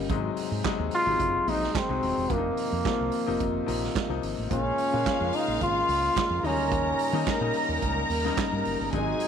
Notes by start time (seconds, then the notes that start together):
Already playing: G1 C#3 G3 A#3 D#4 F4
0.09 G#1 C3 F#3 G#3 C4 D#4 G#4, kick, closed hi-hat
0.37 open hi-hat
0.52 G#2
0.64 C3 F#3 G#3 D#4, kick, snare, clap, closed hi-hat
0.79 D#2
0.91 F4, open hi-hat
1.06 G#1 C3 F#3 G#3 D#4
1.20 F#1, kick, closed hi-hat
1.47 A#1 C3 F#3 G#3 D#4, open hi-hat
1.63 snare
1.75 C4, kick, snare, clap, closed hi-hat
1.89 C2 C3 F#3 G#3 D#4
2.02 D#1, open hi-hat
2.17 E1
2.29 F1 C3 D#3 F3 A#3 D4 F4, kick, closed hi-hat
2.38 D#4
2.57 open hi-hat
2.72 F2
2.85 C3 F3 A#3 F4, kick, snare, clap, closed hi-hat
3.01 C2
3.12 open hi-hat
3.26 F1 C3 F3 A#3 D#4
3.40 F1, kick, closed hi-hat
3.66 A#1 C3 F3 A#3 D#4, open hi-hat
3.84 snare
3.95 kick, snare, clap, closed hi-hat
4.08 C2 C3 F3 A#3 D#4
4.23 G#1, open hi-hat
4.38 A1
4.49 A#1 C#3 G#3 A#3 C#4 F4 G#4 F5, kick, closed hi-hat
4.78 open hi-hat
4.92 A#2 C#3 G#3 A#3 F4
5.06 kick, snare, clap, closed hi-hat
5.19 F2 C#3 G#3 A#3 F4
5.33 D#4, open hi-hat
5.48 A#1
5.61 G#1 F4, kick, closed hi-hat
5.89 C#2, open hi-hat
6.16 kick, snare, clap, closed hi-hat
6.30 F2
6.43 D#2 C#3 F#3 G3 A#3 C#4 D#4 A#4 A#5, open hi-hat
6.50 G3
6.58 D2
6.71 D#2, kick, closed hi-hat
6.99 open hi-hat
7.13 C#3 D#3 G3 A#3 D#4
7.27 kick, snare, clap, closed hi-hat
7.40 A#2 C#3 G3 A#3 D#4
7.54 open hi-hat
7.69 D#2
7.82 C#2, kick, closed hi-hat
8.10 D#2, open hi-hat
8.24 C#3 G3 A#3 D#4, snare
8.37 kick, snare, clap, closed hi-hat
8.52 G2
8.65 F#1, open hi-hat
8.80 G1
8.93 G#1 C3 F#3 G#3 D#4 F#4 G#4 G#5, kick, closed hi-hat
9.20 open hi-hat